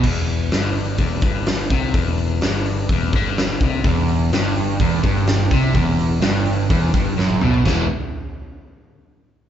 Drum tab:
CC |x---------------|----------------|----------------|----------------|
HH |--o-o-o-o-o-o-o-|o-o-o-o-o-o-o-o-|o-o-o-o-o-o-o-o-|o-o-o-o-o-o-----|
SD |----o-------o---|----o-------o---|----o-------o---|----o-------o---|
T1 |----------------|----------------|----------------|-------------o--|
T2 |----------------|----------------|----------------|--------------o-|
FT |----------------|----------------|----------------|---------------o|
BD |o-------o-o---o-|o-------o-o---o-|o-------o-o---o-|o-------o-o-----|

CC |x---------------|
HH |----------------|
SD |o---------------|
T1 |----------------|
T2 |----------------|
FT |----------------|
BD |o---------------|